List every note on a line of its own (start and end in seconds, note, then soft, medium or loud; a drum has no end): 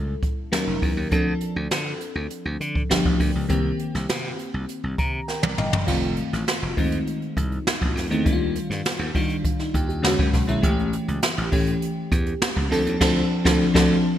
0.00 0.14 C#2 medium
0.00 0.54 G3 medium
0.00 0.52 C#4 medium
0.00 0.54 E4 medium
0.00 0.54 A4 medium
0.23 kick medium
0.23 closed hi-hat medium
0.52 0.63 D#2 loud
0.52 1.02 F#3 medium
0.52 1.02 C#4 medium
0.52 1.02 D#4 medium
0.52 1.02 A#4 medium
0.52 snare loud
0.52 closed hi-hat medium
0.67 0.78 F1 medium
0.82 0.93 E2 medium
0.82 kick medium
0.82 open hi-hat medium
0.97 1.08 D#2 medium
1.11 1.33 D2 loud
1.11 2.11 F3 medium
1.11 2.11 C4 medium
1.11 2.11 D4 medium
1.11 2.12 A4 medium
1.11 kick loud
1.11 closed hi-hat medium
1.41 closed hi-hat medium
1.56 1.67 D2 medium
1.71 1.92 D3 loud
1.71 snare loud
1.71 closed hi-hat medium
2.01 closed hi-hat medium
2.15 2.26 D2 medium
2.31 closed hi-hat medium
2.45 2.56 D2 medium
2.60 2.81 D3 medium
2.60 closed hi-hat medium
2.75 kick medium
2.90 3.01 G1 loud
2.90 3.40 F3 medium
2.90 3.40 B3 medium
2.90 3.40 D4 medium
2.90 3.41 G4 medium
2.90 snare loud
2.90 closed hi-hat medium
3.05 3.16 A1 medium
3.05 kick loud
3.20 3.31 D2 medium
3.20 kick medium
3.20 open hi-hat medium
3.35 3.46 C#2 medium
3.49 3.71 C2 medium
3.49 4.49 D#3 medium
3.49 4.49 A#3 medium
3.49 4.49 C4 medium
3.49 4.49 G4 medium
3.49 kick medium
3.49 closed hi-hat medium
3.79 closed hi-hat medium
3.95 4.05 C2 medium
3.95 snare soft
4.09 4.30 C3 medium
4.09 snare loud
4.09 closed hi-hat medium
4.39 closed hi-hat medium
4.54 4.65 C2 medium
4.69 closed hi-hat medium
4.84 4.94 C2 medium
4.98 5.19 C3 medium
4.98 5.26 A#5 medium
4.98 kick medium
4.98 closed hi-hat medium
5.28 5.42 A#4 medium
5.28 5.56 G5 medium
5.28 snare soft
5.42 5.54 C2 medium
5.42 5.57 D5 medium
5.42 high tom medium
5.58 5.68 G1 medium
5.58 5.72 D#5 medium
5.58 5.86 F5 medium
5.58 mid tom medium
5.73 5.83 F#1 medium
5.73 floor tom medium
5.86 6.19 F1 medium
5.86 6.62 D#3 medium
5.86 5.94 G#3 medium
5.86 6.62 C4 medium
5.86 6.62 F4 medium
5.86 kick loud
5.86 crash medium
5.93 6.65 A3 medium
6.03 closed hi-hat soft
6.17 closed hi-hat medium
6.33 6.43 A1 medium
6.33 snare soft
6.33 closed hi-hat medium
6.48 snare loud
6.48 closed hi-hat medium
6.62 6.73 F1 medium
6.76 6.98 F2 medium
6.76 7.76 D#3 medium
6.76 6.84 G#3 medium
6.76 7.77 C4 medium
6.76 7.77 D#4 medium
6.76 kick medium
6.76 open hi-hat medium
6.83 7.80 A3 medium
6.92 closed hi-hat soft
7.07 closed hi-hat medium
7.22 closed hi-hat soft
7.37 7.58 C2 medium
7.37 kick medium
7.37 closed hi-hat medium
7.52 closed hi-hat soft
7.67 snare loud
7.67 closed hi-hat medium
7.82 7.92 A#1 medium
7.82 kick medium
7.95 8.06 F2 medium
7.95 snare soft
7.95 open hi-hat medium
8.10 8.26 E2 medium
8.10 8.23 D#3 medium
8.10 8.23 A3 medium
8.10 8.23 C4 medium
8.10 8.23 D#4 medium
8.10 closed hi-hat soft
8.25 8.57 D#2 loud
8.25 9.00 D#3 medium
8.25 9.00 G3 medium
8.25 9.00 D4 medium
8.25 8.33 E4 medium
8.25 kick loud
8.25 closed hi-hat medium
8.33 9.04 F4 medium
8.56 closed hi-hat medium
8.70 8.81 G2 medium
8.70 snare soft
8.70 closed hi-hat medium
8.85 snare loud
8.85 closed hi-hat medium
8.99 9.10 D#2 loud
8.99 closed hi-hat soft
9.15 10.04 D#3 medium
9.15 9.36 D#3 medium
9.15 10.04 G3 medium
9.15 9.45 D4 medium
9.15 9.45 F4 medium
9.15 kick medium
9.15 open hi-hat medium
9.30 closed hi-hat soft
9.45 kick medium
9.45 closed hi-hat medium
9.59 9.74 D#4 medium
9.59 snare soft
9.59 closed hi-hat soft
9.74 10.03 D#2 medium
9.74 9.87 G4 medium
9.74 kick medium
9.74 closed hi-hat medium
9.89 10.17 G4 medium
9.89 closed hi-hat soft
10.02 10.14 E2 loud
10.02 10.40 D3 medium
10.02 10.41 G#3 medium
10.02 10.41 C#4 medium
10.02 10.41 F#4 loud
10.02 snare loud
10.02 closed hi-hat medium
10.19 10.30 F#2 medium
10.19 kick loud
10.33 10.44 B1 medium
10.33 kick medium
10.33 snare soft
10.33 open hi-hat medium
10.47 10.59 A#1 medium
10.47 10.60 D3 medium
10.47 10.61 G#3 medium
10.47 10.61 C#4 medium
10.47 10.61 E4 medium
10.47 closed hi-hat medium
10.62 10.95 A1 loud
10.62 11.37 E3 medium
10.62 11.38 A3 medium
10.62 11.38 C#4 medium
10.62 11.38 G4 medium
10.62 kick loud
10.62 closed hi-hat medium
10.79 closed hi-hat soft
10.93 closed hi-hat medium
11.08 11.19 C#2 medium
11.08 closed hi-hat medium
11.22 snare loud
11.22 closed hi-hat medium
11.38 11.48 A1 loud
11.38 closed hi-hat soft
11.51 11.73 A2 medium
11.51 12.51 E3 medium
11.51 12.51 A3 medium
11.51 12.52 C#4 medium
11.51 12.52 G4 medium
11.51 kick medium
11.51 open hi-hat medium
11.67 closed hi-hat medium
11.82 closed hi-hat medium
12.12 12.33 E2 medium
12.12 kick medium
12.12 closed hi-hat medium
12.26 closed hi-hat soft
12.42 snare loud
12.42 closed hi-hat medium
12.57 12.67 C#2 medium
12.57 kick loud
12.70 12.82 D2 medium
12.70 12.99 F3 medium
12.70 12.99 C4 medium
12.70 13.00 D4 medium
12.70 13.00 A4 medium
12.70 snare soft
12.70 open hi-hat medium
12.86 12.97 D#2 medium
12.86 closed hi-hat medium
13.00 13.21 D2 loud
13.00 13.21 F3 medium
13.00 13.21 C4 loud
13.00 13.21 D4 loud
13.00 13.21 A4 loud
13.00 kick loud
13.00 snare loud
13.00 crash medium
13.44 13.66 D2 loud
13.44 13.65 F3 medium
13.44 13.65 C4 medium
13.44 13.65 D4 medium
13.44 13.66 A4 medium
13.44 kick loud
13.44 snare loud
13.74 13.95 D2 loud
13.74 13.95 F3 medium
13.74 13.95 C4 medium
13.74 13.95 D4 loud
13.74 13.95 A4 medium
13.74 kick loud
13.74 snare loud